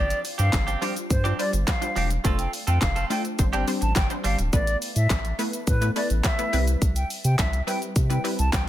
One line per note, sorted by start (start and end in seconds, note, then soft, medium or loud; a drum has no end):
0.00 0.13 G1 loud
0.00 0.22 F3 medium
0.00 0.59 G3 medium
0.00 0.22 C4 medium
0.00 0.23 D4 medium
0.00 0.59 D4 medium
0.00 0.59 F4 medium
0.00 0.23 G4 medium
0.00 0.59 C5 medium
0.00 0.19 D5 loud
0.10 closed hi-hat medium
0.10 shaker medium
0.24 muted clean electric guitar stroke soft
0.24 open hi-hat medium
0.24 shaker medium
0.38 0.50 G2 loud
0.38 0.51 F3 medium
0.38 0.51 C4 medium
0.38 0.51 D4 medium
0.38 0.51 G4 medium
0.38 0.79 F5 medium
0.38 closed hi-hat medium
0.38 shaker medium
0.53 0.76 G1 loud
0.53 muted clean electric guitar stroke medium
0.53 kick loud
0.53 snare loud
0.53 clap loud
0.53 closed hi-hat medium
0.53 shaker medium
0.67 0.80 F3 medium
0.67 0.80 C4 medium
0.67 0.80 D4 medium
0.67 0.79 G4 medium
0.67 closed hi-hat soft
0.67 shaker soft
0.81 0.97 F3 loud
0.81 1.13 G3 medium
0.81 0.96 C4 medium
0.81 1.13 D4 medium
0.81 0.95 D4 loud
0.81 1.13 F4 medium
0.81 0.95 G4 loud
0.81 1.13 C5 medium
0.81 open hi-hat medium
0.81 shaker medium
0.96 muted clean electric guitar stroke medium
0.96 closed hi-hat soft
0.96 shaker medium
1.10 1.33 G2 loud
1.10 1.34 C5 medium
1.10 muted clean electric guitar stroke soft
1.10 kick loud
1.10 closed hi-hat medium
1.10 shaker medium
1.24 1.37 F3 medium
1.24 1.35 G3 medium
1.24 1.38 C4 medium
1.24 1.38 D4 medium
1.24 1.35 D4 medium
1.24 1.35 F4 medium
1.24 1.39 G4 medium
1.24 1.35 C5 medium
1.24 closed hi-hat medium
1.24 shaker medium
1.39 1.70 G3 medium
1.39 1.70 D4 medium
1.39 1.71 F4 medium
1.39 1.71 C5 medium
1.39 1.51 D5 medium
1.39 muted clean electric guitar stroke soft
1.39 open hi-hat medium
1.39 shaker medium
1.53 1.65 G1 loud
1.53 muted clean electric guitar stroke soft
1.53 closed hi-hat medium
1.53 shaker medium
1.68 2.08 F5 medium
1.68 kick loud
1.68 snare loud
1.68 clap loud
1.68 closed hi-hat medium
1.68 shaker medium
1.81 2.13 G3 medium
1.81 2.13 D4 medium
1.81 2.13 F4 medium
1.81 2.13 C5 medium
1.81 muted clean electric guitar stroke soft
1.81 closed hi-hat medium
1.81 shaker medium
1.96 2.19 E1 medium
1.96 2.12 F3 medium
1.96 2.10 C4 medium
1.96 2.10 D4 loud
1.96 2.09 G4 medium
1.96 open hi-hat medium
1.96 shaker medium
2.10 muted clean electric guitar stroke medium
2.10 closed hi-hat medium
2.10 shaker medium
2.24 2.47 F1 loud
2.24 2.51 A3 medium
2.24 2.87 A3 medium
2.24 2.51 C4 medium
2.24 2.88 D4 medium
2.24 2.88 F4 medium
2.24 2.51 F4 medium
2.24 2.51 A4 medium
2.24 2.88 C5 medium
2.24 kick loud
2.24 closed hi-hat medium
2.24 shaker medium
2.39 2.51 G5 medium
2.39 closed hi-hat medium
2.39 shaker medium
2.53 muted clean electric guitar stroke soft
2.53 open hi-hat medium
2.53 shaker medium
2.67 2.79 F2 loud
2.67 2.80 A3 medium
2.67 2.80 C4 medium
2.67 2.80 F4 medium
2.67 2.80 A4 medium
2.67 2.79 G5 medium
2.67 closed hi-hat medium
2.67 shaker medium
2.81 3.04 F1 loud
2.81 3.05 F5 medium
2.81 kick loud
2.81 snare medium
2.81 clap loud
2.81 closed hi-hat medium
2.81 shaker medium
2.96 3.09 A3 medium
2.96 3.09 C4 medium
2.96 3.09 F4 medium
2.96 3.08 A4 medium
2.96 closed hi-hat soft
2.96 shaker soft
3.10 3.26 A3 medium
3.10 3.39 A3 medium
3.10 3.24 C4 medium
3.10 3.38 D4 medium
3.10 3.39 F4 medium
3.10 3.24 F4 medium
3.10 3.23 A4 medium
3.10 3.38 C5 medium
3.10 3.22 G5 medium
3.10 open hi-hat medium
3.10 shaker medium
3.24 muted clean electric guitar stroke medium
3.24 closed hi-hat soft
3.24 shaker medium
3.38 3.50 G1 loud
3.38 3.50 G3 medium
3.38 3.50 C4 medium
3.38 3.50 D4 medium
3.38 3.51 C5 medium
3.38 muted clean electric guitar stroke soft
3.38 kick loud
3.38 closed hi-hat medium
3.38 shaker medium
3.53 3.65 G1 medium
3.53 3.64 G3 medium
3.53 3.66 G3 medium
3.53 3.64 C4 medium
3.53 3.66 C4 medium
3.53 3.67 D4 medium
3.53 3.64 D4 medium
3.53 3.67 G4 loud
3.53 3.64 C5 medium
3.53 3.65 G5 medium
3.53 closed hi-hat medium
3.53 shaker medium
3.67 3.99 G3 medium
3.67 3.99 C4 medium
3.67 3.99 D4 medium
3.67 3.99 C5 medium
3.67 muted clean electric guitar stroke soft
3.67 open hi-hat medium
3.67 shaker soft
3.81 3.93 A1 medium
3.81 3.94 A5 medium
3.81 muted clean electric guitar stroke medium
3.81 closed hi-hat medium
3.81 shaker medium
3.96 4.07 G1 medium
3.96 4.08 G5 medium
3.96 kick loud
3.96 snare loud
3.96 clap loud
3.96 closed hi-hat medium
3.96 shaker medium
4.10 4.42 G3 medium
4.10 4.42 C4 medium
4.10 4.42 D4 medium
4.10 4.42 C5 medium
4.10 muted clean electric guitar stroke soft
4.10 closed hi-hat medium
4.10 shaker medium
4.24 4.36 G1 loud
4.24 4.40 G3 medium
4.24 4.38 C4 medium
4.24 4.38 D4 loud
4.24 4.37 G4 medium
4.24 4.36 F5 medium
4.24 open hi-hat medium
4.24 shaker medium
4.38 4.50 D1 loud
4.38 muted clean electric guitar stroke medium
4.38 closed hi-hat medium
4.38 shaker medium
4.53 4.76 A1 loud
4.53 5.16 A3 medium
4.53 5.16 B3 medium
4.53 5.16 E4 medium
4.53 5.16 B4 medium
4.53 4.77 D5 loud
4.53 kick loud
4.53 closed hi-hat medium
4.53 shaker medium
4.67 closed hi-hat medium
4.67 shaker medium
4.82 open hi-hat medium
4.82 shaker medium
4.95 5.07 A2 medium
4.95 5.36 E5 medium
4.95 closed hi-hat medium
4.95 shaker medium
5.10 5.33 A1 loud
5.10 kick loud
5.10 snare loud
5.10 clap loud
5.10 closed hi-hat medium
5.10 shaker medium
5.25 closed hi-hat soft
5.25 shaker soft
5.39 5.70 A3 medium
5.39 5.70 B3 medium
5.39 5.70 E4 medium
5.39 5.71 B4 medium
5.39 open hi-hat medium
5.39 shaker medium
5.53 closed hi-hat soft
5.53 shaker medium
5.67 5.90 A2 loud
5.67 5.91 B4 medium
5.67 kick loud
5.67 closed hi-hat medium
5.67 shaker medium
5.81 5.92 A3 medium
5.81 5.92 B3 medium
5.81 5.92 E4 medium
5.81 5.92 B4 medium
5.81 closed hi-hat medium
5.81 shaker medium
5.96 6.27 A3 medium
5.96 6.28 B3 medium
5.96 6.28 E4 medium
5.96 6.28 B4 medium
5.96 6.08 D5 medium
5.96 open hi-hat medium
5.96 shaker soft
6.10 6.22 A1 medium
6.10 closed hi-hat medium
6.10 shaker medium
6.24 6.65 E5 medium
6.24 kick loud
6.24 snare loud
6.24 clap loud
6.24 closed hi-hat medium
6.24 shaker medium
6.38 6.53 A3 medium
6.38 6.53 B3 medium
6.38 6.52 E4 medium
6.38 6.52 B4 medium
6.38 closed hi-hat medium
6.38 shaker medium
6.53 6.76 C2 loud
6.53 7.44 G3 medium
6.53 7.44 C4 medium
6.53 7.45 E4 medium
6.53 7.45 B4 medium
6.53 open hi-hat medium
6.53 shaker medium
6.67 closed hi-hat medium
6.67 shaker medium
6.82 7.04 C2 loud
6.82 kick loud
6.82 closed hi-hat medium
6.82 shaker medium
6.96 7.08 G5 medium
6.96 closed hi-hat medium
6.96 shaker medium
7.10 open hi-hat medium
7.10 shaker medium
7.24 7.36 C3 loud
7.24 7.36 G5 medium
7.24 closed hi-hat medium
7.24 shaker medium
7.39 7.62 C2 loud
7.39 7.62 E5 medium
7.39 kick loud
7.39 snare loud
7.39 clap loud
7.39 closed hi-hat medium
7.39 shaker medium
7.53 closed hi-hat soft
7.53 shaker soft
7.67 7.99 G3 medium
7.67 7.99 C4 medium
7.67 7.99 E4 medium
7.67 7.99 B4 medium
7.67 7.80 G5 medium
7.67 open hi-hat medium
7.67 shaker medium
7.82 closed hi-hat soft
7.82 shaker medium
7.96 8.19 C3 loud
7.96 kick loud
7.96 closed hi-hat medium
7.96 shaker medium
8.10 8.20 G3 medium
8.10 8.21 C4 medium
8.10 8.21 E4 medium
8.10 8.21 B4 medium
8.10 8.22 G5 medium
8.10 closed hi-hat medium
8.10 shaker medium
8.24 8.56 G3 medium
8.24 8.56 C4 medium
8.24 8.56 E4 medium
8.24 8.56 B4 medium
8.24 open hi-hat medium
8.24 shaker medium
8.39 8.50 C2 medium
8.39 8.51 A5 medium
8.39 closed hi-hat medium
8.39 shaker medium
8.53 8.69 C2 loud
8.53 8.65 G5 medium
8.53 kick loud
8.53 snare loud
8.53 clap loud
8.53 closed hi-hat medium
8.53 shaker medium